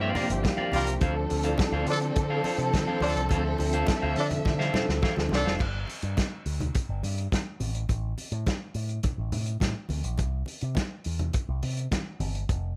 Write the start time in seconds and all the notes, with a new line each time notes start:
Already playing: G2 F3 A#3 C4 D4 E4 G4
0.01 A#4 D5 F5
0.15 F3 A#3 D4 G4 A#4 D5 F5, open hi-hat, muted conga, low conga
0.30 G1 E5, muted clean electric guitar stroke, closed hi-hat
0.43 F5, muted clean electric guitar stroke, kick, snare, closed hi-hat, high conga
0.57 F3 A#3 D4 G4 A#4 D5 F5, high conga
0.72 C2 G3 F4 A#4 D5 F5, open hi-hat, high conga
0.86 muted clean electric guitar stroke, closed hi-hat
1.00 D2 F3 C4 D4 A4 C5 F5, kick, closed hi-hat, muted conga
1.16 muted clean electric guitar stroke
1.29 D2 F3 C4 D4 A4, muted clean electric guitar stroke, open hi-hat
1.43 F3 C4 D4 E4 A4 C5 F5, closed hi-hat
1.58 muted clean electric guitar stroke, kick, snare, closed hi-hat, high conga
1.72 D2 A4 C5 F5
1.87 D3 F3 D4 A4, muted clean electric guitar stroke, open hi-hat
2.01 muted clean electric guitar stroke, closed hi-hat
2.15 D3, muted clean electric guitar stroke, kick, closed hi-hat, muted conga
2.30 A4 C5 F5
2.44 F3 C4 D4 A4 C5 F5, open hi-hat, muted conga
2.58 C3, muted clean electric guitar stroke, closed hi-hat
2.73 D3, muted clean electric guitar stroke, kick, snare, closed hi-hat, high conga
2.88 F3 C4 D4 A4 C5 F5, high conga
3.01 D2 F3 D4 A4 C5 F5, open hi-hat, high conga
3.15 C2, muted clean electric guitar stroke, closed hi-hat
3.29 D2 F3 C4 D4 A4 C5 E5 F5, kick, closed hi-hat, muted conga
3.45 muted clean electric guitar stroke
3.58 D2 F3 C4 D4 A4, muted clean electric guitar stroke, open hi-hat, muted conga
3.72 F3 C4 D4 A4 C5 F5, closed hi-hat
3.87 muted clean electric guitar stroke, kick, snare, closed hi-hat, high conga
4.02 D2 A4 C5 F5
4.16 D3 F3 D4 A4, muted clean electric guitar stroke, open hi-hat
4.30 muted clean electric guitar stroke, closed hi-hat, low conga
4.45 D3, muted clean electric guitar stroke, kick, snare, muted conga, low conga
4.59 A4 C5 F5, snare
4.73 F3 C4 D4 A4 C5 F5, snare, muted conga, low conga
4.87 D2, muted clean electric guitar stroke, snare
5.02 A4 C5 F5, kick, snare, high conga
5.16 D2 F3 C4 D4 F4, muted clean electric guitar stroke, snare, high conga
5.29 C2 F3 D4 A4, muted clean electric guitar stroke, snare, high conga
5.45 F1 A4 C5 F5, snare
5.59 G1, kick, crash, muted conga
5.87 open hi-hat, muted conga
6.02 G2, closed hi-hat
6.17 kick, snare, closed hi-hat, high conga
6.46 D2, open hi-hat
6.60 closed hi-hat, low conga
6.75 kick, closed hi-hat, muted conga
6.89 G1
7.03 G2, open hi-hat, muted conga
7.18 closed hi-hat
7.32 kick, snare, closed hi-hat, high conga
7.60 A1, open hi-hat, high conga
7.75 closed hi-hat
7.89 A1, kick, closed hi-hat, muted conga
8.18 open hi-hat, muted conga
8.32 A2, closed hi-hat
8.46 kick, snare, closed hi-hat, high conga
8.74 A2, open hi-hat
8.89 closed hi-hat
9.03 kick, closed hi-hat, muted conga, low conga
9.18 A1
9.32 A2, open hi-hat, muted conga, low conga
9.46 closed hi-hat
9.60 A2, kick, snare, closed hi-hat, high conga
9.89 D2, open hi-hat, high conga
10.04 A#1, closed hi-hat
10.18 C2, kick, closed hi-hat, muted conga
10.46 open hi-hat, muted conga
10.61 C3, closed hi-hat
10.75 kick, snare, closed hi-hat, high conga
11.04 E2, open hi-hat
11.19 closed hi-hat, low conga
11.33 kick, closed hi-hat, muted conga
11.49 C2
11.63 C3, open hi-hat, muted conga
11.77 closed hi-hat
11.91 kick, snare, closed hi-hat, high conga
12.20 G1, open hi-hat, high conga
12.35 closed hi-hat
12.49 F1, kick, closed hi-hat, muted conga